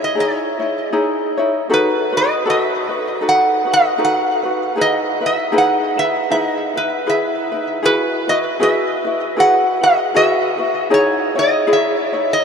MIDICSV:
0, 0, Header, 1, 3, 480
1, 0, Start_track
1, 0, Key_signature, 4, "major"
1, 0, Tempo, 767263
1, 1060, Time_signature, 4, 2, 24, 8
1, 7785, End_track
2, 0, Start_track
2, 0, Title_t, "Resonator guitar played with a steel bar"
2, 0, Program_c, 0, 25
2, 26, Note_on_c, 0, 75, 78
2, 115, Note_off_c, 0, 75, 0
2, 126, Note_on_c, 0, 73, 70
2, 872, Note_off_c, 0, 73, 0
2, 1086, Note_on_c, 0, 71, 86
2, 1358, Note_on_c, 0, 75, 82
2, 1359, Note_off_c, 0, 71, 0
2, 1557, Note_off_c, 0, 75, 0
2, 1563, Note_on_c, 0, 75, 85
2, 1632, Note_off_c, 0, 75, 0
2, 1632, Note_on_c, 0, 76, 85
2, 2047, Note_off_c, 0, 76, 0
2, 2057, Note_on_c, 0, 78, 84
2, 2325, Note_off_c, 0, 78, 0
2, 2336, Note_on_c, 0, 75, 91
2, 2526, Note_off_c, 0, 75, 0
2, 2531, Note_on_c, 0, 78, 87
2, 2871, Note_off_c, 0, 78, 0
2, 3012, Note_on_c, 0, 75, 92
2, 3283, Note_off_c, 0, 75, 0
2, 3291, Note_on_c, 0, 76, 81
2, 3465, Note_off_c, 0, 76, 0
2, 3491, Note_on_c, 0, 78, 84
2, 3748, Note_on_c, 0, 76, 83
2, 3762, Note_off_c, 0, 78, 0
2, 3948, Note_off_c, 0, 76, 0
2, 3951, Note_on_c, 0, 76, 69
2, 4026, Note_off_c, 0, 76, 0
2, 4026, Note_on_c, 0, 75, 69
2, 4233, Note_off_c, 0, 75, 0
2, 4238, Note_on_c, 0, 71, 68
2, 4437, Note_off_c, 0, 71, 0
2, 4439, Note_on_c, 0, 76, 67
2, 4785, Note_off_c, 0, 76, 0
2, 4914, Note_on_c, 0, 71, 88
2, 5188, Note_on_c, 0, 75, 82
2, 5194, Note_off_c, 0, 71, 0
2, 5241, Note_off_c, 0, 75, 0
2, 5398, Note_on_c, 0, 76, 86
2, 5881, Note_on_c, 0, 78, 91
2, 5884, Note_off_c, 0, 76, 0
2, 6153, Note_on_c, 0, 75, 79
2, 6158, Note_off_c, 0, 78, 0
2, 6355, Note_off_c, 0, 75, 0
2, 6359, Note_on_c, 0, 76, 88
2, 6705, Note_off_c, 0, 76, 0
2, 6844, Note_on_c, 0, 73, 89
2, 7092, Note_off_c, 0, 73, 0
2, 7125, Note_on_c, 0, 75, 76
2, 7321, Note_off_c, 0, 75, 0
2, 7337, Note_on_c, 0, 76, 76
2, 7710, Note_off_c, 0, 76, 0
2, 7715, Note_on_c, 0, 75, 79
2, 7785, Note_off_c, 0, 75, 0
2, 7785, End_track
3, 0, Start_track
3, 0, Title_t, "Ukulele"
3, 0, Program_c, 1, 24
3, 0, Note_on_c, 1, 63, 37
3, 0, Note_on_c, 1, 64, 40
3, 0, Note_on_c, 1, 73, 45
3, 93, Note_off_c, 1, 63, 0
3, 95, Note_on_c, 1, 68, 62
3, 97, Note_off_c, 1, 73, 0
3, 101, Note_off_c, 1, 64, 0
3, 101, Note_on_c, 1, 63, 61
3, 109, Note_on_c, 1, 64, 66
3, 112, Note_on_c, 1, 73, 61
3, 364, Note_off_c, 1, 73, 0
3, 367, Note_off_c, 1, 64, 0
3, 372, Note_on_c, 1, 73, 47
3, 373, Note_off_c, 1, 63, 0
3, 375, Note_off_c, 1, 68, 0
3, 375, Note_on_c, 1, 64, 41
3, 381, Note_on_c, 1, 63, 37
3, 572, Note_off_c, 1, 63, 0
3, 575, Note_off_c, 1, 64, 0
3, 575, Note_off_c, 1, 73, 0
3, 579, Note_on_c, 1, 68, 68
3, 580, Note_on_c, 1, 63, 74
3, 583, Note_on_c, 1, 64, 72
3, 583, Note_on_c, 1, 73, 68
3, 853, Note_off_c, 1, 73, 0
3, 858, Note_off_c, 1, 63, 0
3, 858, Note_off_c, 1, 68, 0
3, 859, Note_off_c, 1, 64, 0
3, 860, Note_on_c, 1, 73, 60
3, 871, Note_on_c, 1, 64, 59
3, 872, Note_on_c, 1, 63, 46
3, 1058, Note_off_c, 1, 63, 0
3, 1058, Note_off_c, 1, 73, 0
3, 1061, Note_on_c, 1, 69, 70
3, 1065, Note_off_c, 1, 64, 0
3, 1066, Note_on_c, 1, 63, 81
3, 1068, Note_on_c, 1, 66, 73
3, 1073, Note_on_c, 1, 71, 76
3, 1321, Note_off_c, 1, 71, 0
3, 1326, Note_off_c, 1, 69, 0
3, 1328, Note_off_c, 1, 66, 0
3, 1329, Note_on_c, 1, 71, 50
3, 1334, Note_off_c, 1, 63, 0
3, 1335, Note_on_c, 1, 66, 45
3, 1342, Note_on_c, 1, 63, 43
3, 1536, Note_off_c, 1, 71, 0
3, 1536, Note_on_c, 1, 69, 78
3, 1539, Note_off_c, 1, 66, 0
3, 1542, Note_off_c, 1, 63, 0
3, 1544, Note_on_c, 1, 71, 80
3, 1546, Note_on_c, 1, 66, 80
3, 1800, Note_off_c, 1, 71, 0
3, 1808, Note_on_c, 1, 71, 45
3, 1809, Note_off_c, 1, 66, 0
3, 1817, Note_off_c, 1, 69, 0
3, 1817, Note_on_c, 1, 66, 36
3, 2006, Note_off_c, 1, 71, 0
3, 2009, Note_off_c, 1, 66, 0
3, 2009, Note_on_c, 1, 69, 63
3, 2013, Note_on_c, 1, 63, 56
3, 2016, Note_on_c, 1, 66, 60
3, 2020, Note_on_c, 1, 71, 59
3, 2277, Note_off_c, 1, 71, 0
3, 2282, Note_off_c, 1, 69, 0
3, 2284, Note_on_c, 1, 71, 46
3, 2285, Note_off_c, 1, 66, 0
3, 2289, Note_off_c, 1, 63, 0
3, 2292, Note_on_c, 1, 66, 39
3, 2297, Note_on_c, 1, 63, 37
3, 2486, Note_off_c, 1, 63, 0
3, 2488, Note_off_c, 1, 71, 0
3, 2490, Note_off_c, 1, 66, 0
3, 2491, Note_on_c, 1, 69, 67
3, 2493, Note_on_c, 1, 63, 64
3, 2497, Note_on_c, 1, 66, 74
3, 2500, Note_on_c, 1, 71, 74
3, 2766, Note_off_c, 1, 71, 0
3, 2771, Note_off_c, 1, 69, 0
3, 2773, Note_on_c, 1, 71, 54
3, 2775, Note_off_c, 1, 63, 0
3, 2778, Note_off_c, 1, 66, 0
3, 2785, Note_on_c, 1, 66, 47
3, 2789, Note_on_c, 1, 63, 38
3, 2976, Note_off_c, 1, 63, 0
3, 2976, Note_on_c, 1, 68, 69
3, 2979, Note_off_c, 1, 71, 0
3, 2984, Note_off_c, 1, 66, 0
3, 2984, Note_on_c, 1, 63, 68
3, 2986, Note_on_c, 1, 64, 68
3, 2990, Note_on_c, 1, 71, 79
3, 3252, Note_off_c, 1, 71, 0
3, 3257, Note_off_c, 1, 68, 0
3, 3260, Note_off_c, 1, 64, 0
3, 3260, Note_on_c, 1, 71, 50
3, 3261, Note_off_c, 1, 63, 0
3, 3267, Note_on_c, 1, 64, 43
3, 3451, Note_off_c, 1, 64, 0
3, 3453, Note_on_c, 1, 68, 76
3, 3456, Note_on_c, 1, 63, 84
3, 3457, Note_off_c, 1, 71, 0
3, 3459, Note_on_c, 1, 64, 80
3, 3464, Note_on_c, 1, 71, 84
3, 3727, Note_off_c, 1, 71, 0
3, 3730, Note_off_c, 1, 64, 0
3, 3734, Note_on_c, 1, 71, 39
3, 3736, Note_off_c, 1, 68, 0
3, 3737, Note_off_c, 1, 63, 0
3, 3738, Note_on_c, 1, 64, 37
3, 3939, Note_off_c, 1, 71, 0
3, 3941, Note_off_c, 1, 64, 0
3, 3943, Note_on_c, 1, 68, 55
3, 3944, Note_on_c, 1, 63, 58
3, 3951, Note_on_c, 1, 64, 68
3, 3954, Note_on_c, 1, 71, 62
3, 4218, Note_off_c, 1, 71, 0
3, 4220, Note_off_c, 1, 64, 0
3, 4220, Note_off_c, 1, 68, 0
3, 4221, Note_off_c, 1, 63, 0
3, 4226, Note_on_c, 1, 71, 48
3, 4227, Note_on_c, 1, 64, 46
3, 4235, Note_on_c, 1, 63, 33
3, 4416, Note_off_c, 1, 64, 0
3, 4418, Note_off_c, 1, 71, 0
3, 4420, Note_on_c, 1, 68, 61
3, 4421, Note_off_c, 1, 63, 0
3, 4424, Note_on_c, 1, 64, 65
3, 4426, Note_on_c, 1, 71, 79
3, 4695, Note_off_c, 1, 71, 0
3, 4699, Note_off_c, 1, 68, 0
3, 4701, Note_off_c, 1, 64, 0
3, 4702, Note_on_c, 1, 71, 47
3, 4707, Note_on_c, 1, 64, 43
3, 4716, Note_on_c, 1, 63, 38
3, 4895, Note_off_c, 1, 64, 0
3, 4896, Note_on_c, 1, 68, 66
3, 4899, Note_off_c, 1, 71, 0
3, 4900, Note_off_c, 1, 63, 0
3, 4902, Note_on_c, 1, 64, 77
3, 4906, Note_on_c, 1, 71, 86
3, 4907, Note_on_c, 1, 66, 68
3, 5172, Note_off_c, 1, 71, 0
3, 5177, Note_off_c, 1, 68, 0
3, 5179, Note_on_c, 1, 71, 52
3, 5180, Note_off_c, 1, 64, 0
3, 5182, Note_off_c, 1, 66, 0
3, 5189, Note_on_c, 1, 66, 47
3, 5195, Note_on_c, 1, 64, 35
3, 5376, Note_off_c, 1, 64, 0
3, 5376, Note_off_c, 1, 71, 0
3, 5378, Note_on_c, 1, 68, 64
3, 5381, Note_off_c, 1, 66, 0
3, 5383, Note_on_c, 1, 64, 75
3, 5388, Note_on_c, 1, 66, 72
3, 5388, Note_on_c, 1, 71, 71
3, 5653, Note_off_c, 1, 71, 0
3, 5658, Note_off_c, 1, 68, 0
3, 5660, Note_on_c, 1, 71, 45
3, 5661, Note_off_c, 1, 64, 0
3, 5663, Note_off_c, 1, 66, 0
3, 5671, Note_on_c, 1, 66, 37
3, 5674, Note_on_c, 1, 64, 41
3, 5856, Note_off_c, 1, 71, 0
3, 5857, Note_off_c, 1, 64, 0
3, 5859, Note_on_c, 1, 68, 55
3, 5861, Note_off_c, 1, 66, 0
3, 5864, Note_on_c, 1, 64, 64
3, 5869, Note_on_c, 1, 66, 62
3, 5870, Note_on_c, 1, 71, 70
3, 6130, Note_off_c, 1, 71, 0
3, 6135, Note_off_c, 1, 68, 0
3, 6137, Note_on_c, 1, 71, 47
3, 6141, Note_off_c, 1, 64, 0
3, 6141, Note_off_c, 1, 66, 0
3, 6148, Note_on_c, 1, 66, 39
3, 6150, Note_on_c, 1, 64, 40
3, 6340, Note_off_c, 1, 64, 0
3, 6341, Note_off_c, 1, 71, 0
3, 6345, Note_off_c, 1, 66, 0
3, 6346, Note_on_c, 1, 68, 66
3, 6347, Note_on_c, 1, 64, 69
3, 6352, Note_on_c, 1, 66, 84
3, 6357, Note_on_c, 1, 71, 74
3, 6612, Note_off_c, 1, 71, 0
3, 6617, Note_off_c, 1, 68, 0
3, 6620, Note_off_c, 1, 66, 0
3, 6620, Note_on_c, 1, 71, 52
3, 6623, Note_off_c, 1, 64, 0
3, 6627, Note_on_c, 1, 66, 44
3, 6633, Note_on_c, 1, 64, 37
3, 6818, Note_off_c, 1, 64, 0
3, 6818, Note_off_c, 1, 71, 0
3, 6821, Note_on_c, 1, 68, 74
3, 6823, Note_off_c, 1, 66, 0
3, 6825, Note_on_c, 1, 63, 65
3, 6826, Note_on_c, 1, 64, 81
3, 6828, Note_on_c, 1, 73, 77
3, 7096, Note_off_c, 1, 73, 0
3, 7099, Note_off_c, 1, 68, 0
3, 7102, Note_off_c, 1, 63, 0
3, 7102, Note_off_c, 1, 64, 0
3, 7103, Note_on_c, 1, 73, 54
3, 7113, Note_on_c, 1, 64, 45
3, 7118, Note_on_c, 1, 63, 38
3, 7297, Note_off_c, 1, 64, 0
3, 7301, Note_on_c, 1, 68, 82
3, 7302, Note_off_c, 1, 63, 0
3, 7304, Note_off_c, 1, 73, 0
3, 7304, Note_on_c, 1, 64, 84
3, 7311, Note_on_c, 1, 73, 85
3, 7580, Note_off_c, 1, 68, 0
3, 7580, Note_off_c, 1, 73, 0
3, 7581, Note_off_c, 1, 64, 0
3, 7587, Note_on_c, 1, 73, 43
3, 7595, Note_on_c, 1, 64, 48
3, 7598, Note_on_c, 1, 63, 34
3, 7785, Note_off_c, 1, 63, 0
3, 7785, Note_off_c, 1, 64, 0
3, 7785, Note_off_c, 1, 73, 0
3, 7785, End_track
0, 0, End_of_file